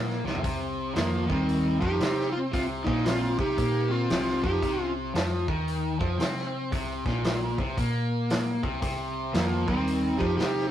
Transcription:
0.00 0.21 A#2 medium
0.00 0.25 A#3 medium
0.10 snare soft
0.25 0.42 C2 medium
0.25 0.42 C3 medium
0.25 snare medium
0.35 floor tom medium
0.43 0.92 C2 medium
0.43 0.94 C3 loud
0.43 kick loud
0.43 open hi-hat soft
0.95 1.27 F2 medium
0.95 1.28 D#3 medium
0.95 1.26 F3 loud
0.95 1.31 A#3 medium
0.95 snare loud
0.95 open hi-hat soft
1.27 1.78 D#2 medium
1.27 1.80 D#3 medium
1.27 kick medium
1.32 1.80 G3 medium
1.32 1.85 C4 medium
1.49 open hi-hat soft
1.80 1.99 F2 medium
1.80 2.00 F3 medium
1.80 2.31 D#4 medium
1.80 2.32 G4 loud
1.80 kick loud
2.00 2.49 C3 medium
2.00 2.52 C4 loud
2.00 snare loud
2.00 open hi-hat medium
2.19 snare soft
2.32 2.38 F4 medium
2.37 2.42 C4 medium
2.52 2.85 C2 medium
2.52 2.85 C3 loud
2.52 2.63 C4 medium
2.52 2.63 F4 loud
2.52 kick loud
2.52 open hi-hat medium
2.84 3.35 A#1 medium
2.84 3.38 A#2 medium
2.84 3.04 A#3 medium
2.84 3.05 D#4 medium
2.84 kick medium
3.05 3.38 C4 medium
3.05 3.40 F4 medium
3.05 snare loud
3.05 open hi-hat medium
3.38 3.56 C2 medium
3.38 3.57 C3 medium
3.38 3.89 D#4 medium
3.38 3.94 G4 loud
3.38 kick loud
3.57 4.06 A#2 medium
3.57 4.10 A#3 medium
3.57 kick medium
3.57 open hi-hat soft
3.90 4.39 C4 medium
3.90 4.45 F4 medium
4.10 4.41 C2 medium
4.10 4.43 C3 loud
4.10 snare loud
4.10 open hi-hat soft
4.28 snare soft
4.41 4.61 F2 medium
4.41 4.63 F3 loud
4.41 4.92 D#4 medium
4.41 4.91 G4 medium
4.41 kick loud
4.62 5.11 C2 medium
4.62 5.14 C3 loud
4.62 kick medium
4.62 open hi-hat soft
5.14 5.46 F2 medium
5.14 5.47 F3 loud
5.14 snare loud
5.14 open hi-hat soft
5.48 5.97 D#2 medium
5.48 5.99 D#3 medium
5.48 kick medium
5.68 open hi-hat soft
5.99 6.18 F2 medium
5.99 6.19 F3 medium
5.99 kick loud
6.19 6.68 C3 medium
6.19 6.71 C4 loud
6.19 snare loud
6.19 open hi-hat medium
6.38 snare soft
6.72 7.03 C2 medium
6.72 7.05 C3 medium
6.72 kick loud
6.72 open hi-hat medium
7.05 7.54 A#1 medium
7.05 7.58 A#2 medium
7.05 kick medium
7.05 snare soft
7.24 snare loud
7.24 open hi-hat medium
7.58 7.76 C2 medium
7.58 7.77 C3 loud
7.58 kick loud
7.77 8.59 A#2 medium
7.77 8.62 A#3 loud
7.77 kick medium
7.77 open hi-hat medium
8.30 snare loud
8.30 open hi-hat medium
8.63 8.81 C2 medium
8.63 8.80 C3 medium
8.63 kick loud
8.82 9.31 C2 medium
8.82 9.34 C3 loud
8.82 kick loud
8.82 open hi-hat medium
9.34 9.66 F2 medium
9.34 9.66 D#3 medium
9.34 9.67 F3 medium
9.34 9.68 A#3 medium
9.34 snare loud
9.34 open hi-hat medium
9.66 10.17 D#2 medium
9.66 10.18 D#3 medium
9.66 10.16 G3 medium
9.66 10.22 C4 medium
9.66 kick loud
9.88 open hi-hat soft
10.17 10.37 F2 medium
10.17 10.38 F3 medium
10.17 10.35 D#4 medium
10.17 10.36 G4 loud
10.17 kick loud
10.36 10.71 C3 medium
10.36 10.71 C4 loud
10.36 10.69 D#4 medium
10.36 10.69 G4 loud
10.36 open hi-hat soft
10.40 snare medium
10.58 snare soft

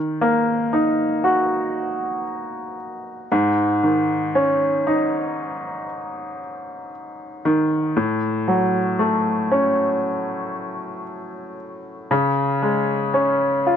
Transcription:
0.00 3.27 D#3 medium
0.21 2.24 A#3 soft
0.73 2.76 D#4 soft
1.24 3.27 F#4 soft
3.32 7.41 G#2 medium
3.83 5.86 D#3 soft
4.35 6.38 C#4 soft
4.87 6.89 D#4 soft
7.45 7.95 D#3 medium
7.97 12.06 A2 medium
8.48 10.51 F#3 soft
8.99 11.03 A3 soft
9.52 11.54 C#4 soft
12.11 13.77 C#3 medium
12.62 13.77 G#3 soft
13.14 13.77 C#4 soft
13.67 13.77 F4 soft

